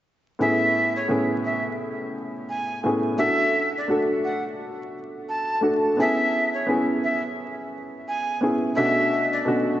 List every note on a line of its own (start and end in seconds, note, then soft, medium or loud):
0.39 0.96 A2 medium
0.39 0.96 B3 medium
0.39 0.96 C#4 medium
0.39 0.97 E4 medium
0.39 0.97 G#4 medium
0.39 0.94 E5 loud
0.96 1.08 C#5 medium
1.08 2.14 A2 medium
1.08 2.14 B3 medium
1.08 2.14 C#4 medium
1.08 2.15 E4 medium
1.08 2.15 G#4 medium
1.45 1.64 E5 medium
2.49 2.81 G#5 medium
2.83 3.12 A2 medium
2.83 3.12 B3 medium
2.83 3.13 C#4 medium
2.83 3.13 E4 medium
2.83 3.13 G#4 medium
3.17 3.74 A3 medium
3.17 3.75 D4 medium
3.17 3.75 F#4 medium
3.17 3.76 A4 medium
3.17 3.72 E5 loud
3.78 3.89 D5 medium
3.88 4.93 A3 medium
3.88 4.93 D4 medium
3.88 4.94 F#4 medium
3.88 4.94 A4 medium
4.24 4.43 F#5 medium
5.29 5.60 A5 medium
5.61 5.90 A3 medium
5.61 5.91 D4 medium
5.61 5.91 F#4 medium
5.61 5.92 A4 medium
5.97 6.54 B3 medium
5.97 6.54 C#4 medium
5.97 6.55 E4 medium
5.97 6.55 G#4 medium
5.97 6.52 E5 loud
6.54 6.66 C#5 medium
6.66 7.72 B3 medium
6.66 7.72 C#4 medium
6.66 7.73 E4 medium
6.66 7.73 G#4 medium
7.04 7.23 E5 medium
8.08 8.39 G#5 medium
8.41 8.70 B3 medium
8.41 8.70 C#4 medium
8.41 8.71 E4 medium
8.41 8.71 G#4 medium
8.76 9.33 B2 medium
8.76 9.33 A3 medium
8.76 9.34 C#4 medium
8.76 9.34 D4 medium
8.76 9.35 F#4 medium
8.76 9.29 E5 loud
9.33 9.45 D5 medium
9.45 9.80 B2 medium
9.45 9.80 A3 medium
9.45 9.80 C#4 medium
9.45 9.80 D4 medium
9.45 9.80 F#4 medium